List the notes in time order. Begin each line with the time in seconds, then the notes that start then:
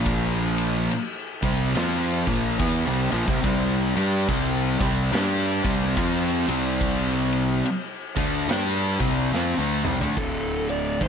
Already playing: A#1 A#2 F3 A#3
0.06 kick, ride
0.58 ride
0.91 ride
1.42 C2 C3 G3 C4, kick, ride
1.75 F2 F3 C4 F4, snare, ride
2.27 A#1 A#2 F3 A#3, kick, ride
2.59 E2 E3 B3, kick, ride
2.86 C2 C3 G3
3.11 A#1 A#2 F3, ride
3.28 C2 C3 G3, kick
3.43 C2 C3 G3 C4, kick, ride
3.95 G2 G3 D4 G4, ride
4.28 C2 C3 G3 C4, kick, ride
4.79 C2 C3 G3 C4, kick, ride
5.12 G2 G3 D4 G4, snare, ride
5.63 C2 C3 G3 C4, kick, ride
5.83 snare
5.97 F2 F3 C4 F4, kick, ride
6.48 C2 C3 G3 C4, ride
6.81 kick, ride
7.33 ride
7.65 ride
8.16 D2 D3 A3 D4, kick, ride
8.48 G2 G3 D4 G4, snare, ride
9.00 C2 C3 G3 C4, kick, ride
9.32 F2 F3 C4, snare
9.58 D2 D3 A3
9.84 C2 C3 G3, mid tom
10.00 D2 D3 A3, floor tom
10.17 D1 D2 A2 D3 A4, kick, ride
10.69 D5, ride
11.01 G#1 G#2 D#3 C5, kick, ride